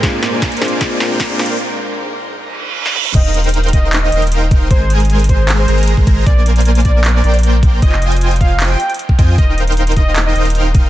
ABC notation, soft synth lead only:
X:1
M:4/4
L:1/16
Q:1/4=154
K:Eb
V:1 name="Soft synth lead"
z16 | z16 | e2 z4 e2 z e2 z4 z | c2 z4 c2 z c2 z4 z |
d2 z4 d2 z d2 z4 z | e2 z4 f2 z g2 z4 z | e2 z4 e2 z e2 z4 z |]